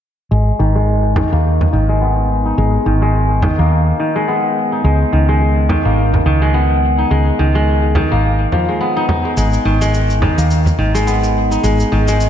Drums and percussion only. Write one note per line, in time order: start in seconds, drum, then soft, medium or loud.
1.16 frame drum medium
1.61 frame drum medium
3.42 frame drum medium
5.70 frame drum medium
6.14 frame drum medium
7.95 frame drum medium
8.52 frame drum medium
9.09 frame drum medium
9.37 shaker medium
9.53 shaker soft
9.82 shaker medium
9.94 shaker medium
10.10 shaker soft
10.22 frame drum medium
10.38 shaker medium
10.51 shaker soft
10.66 frame drum medium
10.66 shaker soft
10.95 shaker medium
11.08 shaker medium
11.24 shaker soft
11.52 shaker medium
11.64 shaker medium
11.80 shaker soft
12.08 shaker medium
12.20 shaker soft